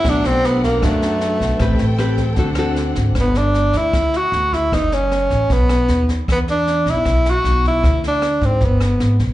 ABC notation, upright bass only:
X:1
M:4/4
L:1/8
Q:1/4=154
K:G
V:1 name="Upright bass" clef=bass
B,,, B,,,3 F,,3 B,,, | A,,, A,,,3 D,,3 _A,,, | G,,,3 D,, D,,2 D,,2 | F,,,3 A,,, B,,,2 ^D,,2 |
E,,3 B,,, B,,,2 B,,,2 | D,,3 ^G,, =G,,,2 _A,,, B,,, |]